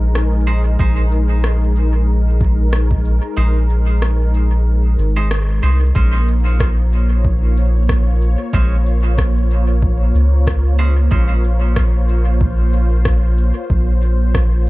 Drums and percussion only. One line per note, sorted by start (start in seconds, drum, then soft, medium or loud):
0.15 cross-stick medium
0.47 cabasa soft
0.79 kick loud
1.12 cabasa soft
1.44 cross-stick medium
1.76 cabasa soft
2.40 kick loud
2.40 cabasa soft
2.73 cross-stick medium
2.91 kick loud
3.05 cabasa soft
3.70 cabasa medium
4.02 cross-stick medium
4.34 cabasa soft
4.99 cabasa medium
5.31 cross-stick medium
5.63 cabasa medium
5.96 kick loud
6.28 cabasa medium
6.60 kick loud
6.60 cross-stick medium
6.93 cabasa medium
7.25 kick loud
7.57 cabasa medium
7.89 kick loud
7.89 cross-stick medium
8.21 cabasa medium
8.53 kick loud
8.86 cabasa medium
9.18 kick loud
9.18 cross-stick medium
9.51 cabasa medium
9.82 kick loud
10.15 cabasa medium
10.47 kick loud
10.47 cross-stick medium
10.80 cabasa medium
11.12 kick loud
11.44 cabasa medium
11.76 kick loud
11.76 cross-stick medium
12.09 cabasa medium
12.41 kick loud
12.73 cabasa medium
13.05 kick loud
13.05 cross-stick medium
13.38 cabasa medium
13.70 kick loud
14.02 cabasa medium
14.35 kick loud
14.35 cross-stick medium